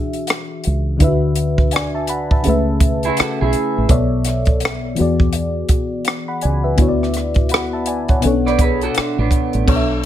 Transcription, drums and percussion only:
0.13 closed hi-hat
0.27 cross-stick, closed hi-hat
0.64 closed hi-hat
1.00 kick, closed hi-hat
1.36 closed hi-hat
1.58 kick
1.71 closed hi-hat
1.76 cross-stick
2.07 closed hi-hat
2.31 kick
2.44 closed hi-hat
2.80 kick, closed hi-hat
3.03 closed hi-hat
3.17 cross-stick, closed hi-hat
3.53 closed hi-hat
3.89 kick, closed hi-hat
4.25 cross-stick, closed hi-hat
4.45 kick, closed hi-hat
4.60 closed hi-hat
4.65 cross-stick
4.96 closed hi-hat
5.20 kick
5.33 closed hi-hat
5.69 kick, closed hi-hat
6.05 cross-stick, closed hi-hat
6.41 closed hi-hat
6.78 kick, closed hi-hat
7.03 cross-stick
7.14 cross-stick, closed hi-hat
7.34 kick, closed hi-hat
7.49 closed hi-hat
7.54 cross-stick
7.86 closed hi-hat
8.09 kick, closed hi-hat
8.22 closed hi-hat
8.47 cross-stick
8.59 kick, closed hi-hat
8.81 closed hi-hat
8.95 cross-stick, closed hi-hat
9.31 kick, closed hi-hat
9.53 closed hi-hat
9.68 kick, crash

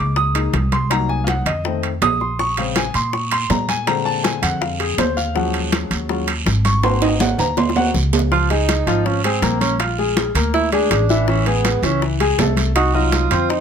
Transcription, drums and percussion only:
0.16 high bongo, high conga
0.35 high conga, high timbale
0.53 high bongo, low bongo, high conga, high timbale
0.72 high conga, high timbale
0.91 high bongo, high conga, high timbale
1.09 high bongo, high conga
1.27 high bongo, high conga, high timbale
1.46 high bongo, high conga, low conga, high timbale
1.64 high bongo, high conga
1.83 high conga, high timbale
2.02 high bongo, low bongo, high conga, high timbale, low timbale
2.20 high bongo, high conga
2.39 high bongo, high conga, long guiro
2.57 high conga, high timbale
2.76 high bongo, high conga, high timbale, short guiro
2.94 high conga, high timbale, short guiro
3.13 high bongo, high conga, long guiro
3.31 high conga, high timbale
3.50 high bongo, low bongo, high conga, high timbale, low timbale, short guiro
3.69 high conga, high timbale, short guiro
3.87 high bongo, high conga, high timbale, long guiro
4.06 high bongo, high conga
4.24 high bongo, high conga, high timbale, short guiro
4.43 high bongo, high conga, low conga, high timbale, short guiro
4.62 high bongo, high conga, long guiro
4.80 high conga, high timbale
4.98 high bongo, low bongo, high conga, high timbale, low timbale, short guiro
5.17 high bongo, high conga, short guiro
5.35 high bongo, high conga, long guiro
5.54 high conga, high timbale
5.72 high bongo, high conga, high timbale, short guiro
5.91 high conga, high timbale, short guiro
6.09 high bongo, high conga, long guiro
6.28 high conga, high timbale
6.46 high bongo, low bongo, high conga, high timbale, short guiro
6.65 high conga, high timbale, short guiro
6.83 high bongo, high conga, high timbale, long guiro
7.02 high bongo, high conga, high timbale
7.20 high bongo, high conga, low timbale, short guiro
7.39 high bongo, high conga, low conga, high timbale, short guiro
7.57 high bongo, high conga, low conga, low timbale, long guiro
7.69 high bongo
7.76 high conga, low timbale
7.94 low bongo, high conga, short guiro
8.13 high conga, low timbale, short guiro
8.19 low bongo
8.32 high bongo, high conga, long guiro
8.50 high conga, high timbale
8.69 high bongo, high conga, high timbale, short guiro
8.87 high conga, high timbale, short guiro
9.06 high bongo, high conga, long guiro
9.24 high conga, high timbale
9.42 high bongo, low bongo, high conga, high timbale, short guiro
9.61 high conga, high timbale, short guiro
9.80 high bongo, high conga, high timbale, long guiro
9.98 high bongo, high conga
10.17 high bongo, high conga, high timbale, short guiro
10.35 high bongo, high conga, low conga, high timbale, short guiro
10.54 high bongo, high conga, long guiro
10.72 high conga, high timbale
10.91 high bongo, low bongo, high conga, high timbale, short guiro
11.09 high bongo, high conga, short guiro
11.28 high bongo, high conga, long guiro
11.46 high conga, high timbale
11.65 high bongo, high conga, high timbale, short guiro
11.83 high conga, high timbale, short guiro
12.02 high bongo, high conga, long guiro
12.20 high conga, high timbale
12.38 high bongo, low bongo, high conga, high timbale, low timbale, short guiro
12.57 high conga, high timbale, short guiro
12.76 high bongo, high conga, high timbale, long guiro
12.94 high bongo, high conga
13.12 high bongo, high conga, high timbale, short guiro
13.31 high bongo, high conga, low conga, high timbale, short guiro
13.49 high bongo, high conga, long guiro

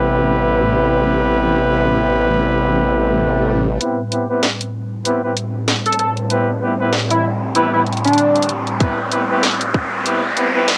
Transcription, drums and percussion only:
3.81 closed hi-hat
4.12 closed hi-hat
4.43 snare, closed hi-hat
4.61 closed hi-hat
5.05 closed hi-hat
5.37 closed hi-hat
5.68 snare, closed hi-hat
5.86 closed hi-hat
5.92 closed hi-hat
5.99 closed hi-hat
6.17 closed hi-hat
6.30 closed hi-hat
6.93 snare, closed hi-hat
7.11 closed hi-hat
7.55 closed hi-hat
7.87 closed hi-hat
7.93 closed hi-hat
7.97 closed hi-hat
8.05 closed hi-hat
8.08 closed hi-hat
8.14 closed hi-hat
8.18 closed hi-hat
8.36 closed hi-hat
8.43 closed hi-hat
8.49 closed hi-hat
8.67 closed hi-hat
8.81 kick, closed hi-hat
9.12 closed hi-hat
9.43 snare, closed hi-hat
9.61 closed hi-hat
9.74 kick
10.06 closed hi-hat
10.37 closed hi-hat
10.68 snare, closed hi-hat

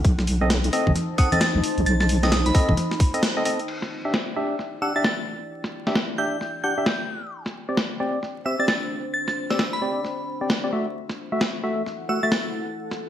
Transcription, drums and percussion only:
0.05 kick, closed hi-hat
0.19 snare
0.27 open hi-hat
0.50 snare, closed hi-hat
0.64 closed hi-hat
0.73 open hi-hat
0.87 kick, high conga
0.96 snare, closed hi-hat
1.18 kick, open hi-hat
1.32 closed hi-hat, high conga
1.41 snare, closed hi-hat
1.64 open hi-hat
1.78 closed hi-hat
1.86 closed hi-hat
2.00 snare
2.09 open hi-hat
2.23 snare
2.32 snare, closed hi-hat
2.46 closed hi-hat
2.55 kick, open hi-hat
2.69 kick, high conga
2.77 snare, closed hi-hat
2.91 snare
3.00 kick, open hi-hat
3.14 closed hi-hat
3.23 snare, closed hi-hat
3.45 open hi-hat
3.60 closed hi-hat
3.68 crash
3.82 snare
4.14 snare
4.59 snare
5.05 snare
5.64 snare
5.87 snare
5.95 snare
6.41 snare
6.86 snare
7.46 snare
7.77 snare
8.23 snare
8.68 snare
9.28 snare
9.50 snare
9.59 snare
10.05 snare
10.50 snare
11.10 snare
11.41 snare
11.86 snare
12.32 snare
12.91 snare

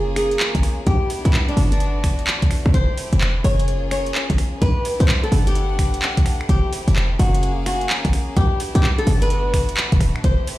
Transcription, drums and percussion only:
0.16 finger snap, open hi-hat
0.31 closed hi-hat
0.40 clap
0.55 kick, closed hi-hat
0.63 finger snap, open hi-hat
0.87 kick, closed hi-hat
1.10 open hi-hat
1.25 closed hi-hat
1.33 clap
1.49 closed hi-hat
1.57 open hi-hat
1.72 closed hi-hat
1.80 closed hi-hat
2.04 finger snap, kick, open hi-hat
2.19 closed hi-hat
2.27 clap
2.42 kick, closed hi-hat
2.51 finger snap, open hi-hat
2.66 finger snap
2.74 kick, closed hi-hat
2.97 open hi-hat
3.13 closed hi-hat
3.21 clap
3.44 open hi-hat
3.60 closed hi-hat
3.68 closed hi-hat
3.91 finger snap, open hi-hat
4.06 closed hi-hat
4.15 clap
4.30 kick, closed hi-hat
4.38 finger snap, open hi-hat
4.62 kick, closed hi-hat
4.85 open hi-hat
5.00 closed hi-hat
5.08 clap
5.24 closed hi-hat
5.32 open hi-hat
5.47 closed hi-hat
5.55 closed hi-hat
5.79 finger snap, kick, open hi-hat
5.94 closed hi-hat
6.02 clap
6.17 kick, closed hi-hat
6.26 finger snap, open hi-hat
6.41 finger snap
6.49 kick, closed hi-hat
6.73 open hi-hat
6.88 closed hi-hat
6.96 clap
7.19 open hi-hat
7.35 closed hi-hat
7.43 closed hi-hat
7.66 finger snap, open hi-hat
7.81 closed hi-hat
7.90 clap
8.05 kick, closed hi-hat
8.13 finger snap, open hi-hat
8.37 kick, closed hi-hat
8.60 open hi-hat
8.75 closed hi-hat
8.83 clap
8.98 closed hi-hat
9.07 open hi-hat
9.22 closed hi-hat
9.30 closed hi-hat
9.54 finger snap, kick, open hi-hat
9.69 closed hi-hat
9.77 clap
9.92 kick, closed hi-hat
10.01 finger snap, open hi-hat
10.16 finger snap
10.24 kick, closed hi-hat
10.47 open hi-hat

